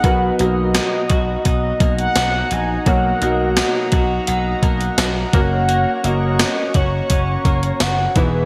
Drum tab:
HH |x-x-x-x-x-xxx-x-|x-x-x-x-x-xxx-x-|x-x-x-x-x-xxx-x-|
TB |----x-------x---|----x-------x---|----x-------x---|
SD |----o-------o---|----o-------o---|----o-------o---|
BD |o-----o-o-o-----|o-----o---o---o-|------o-o-o---o-|